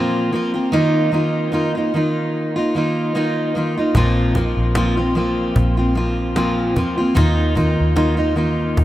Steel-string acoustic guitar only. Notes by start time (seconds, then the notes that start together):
Already playing: A#2 F3 A#3 C4 F4
0.33 F3 A#3 C4 F4
0.54 A#3 C4 F4
0.72 D#3 A#3 D#4 F4
1.12 D#3 A#3 D#4 F4
1.52 D#3 A#3 D#4 F4
1.75 A#3 D#4 F4
1.94 D#3 A#3 D#4 F4
2.56 A#3 D#4 F4
2.75 D#3 A#3 D#4 F4
3.15 D#3 A#3 D#4 F4
3.55 D#3 A#3 D#4 F4
3.77 A#3 D#4 F4
3.96 A#2 F3 A#3 C4 F4
4.35 F3 A#3 C4 F4
4.76 A#2 F3 A#3 C4 F4
4.97 A#3 C4 F4
5.15 F3 A#3 C4 F4
5.77 A#3 C4 F4
5.95 F3 A#3 C4 F4
6.36 A#2 F3 A#3 C4 F4
6.76 F3 A#3 C4 F4
6.97 A#3 C4 F4
7.15 D#3 A#3 D#4 F4
7.55 D#3 A#3 D#4 F4
7.96 D#3 A#3 D#4 F4
8.17 A#3 D#4 F4
8.36 D#3 A#3 D#4 F4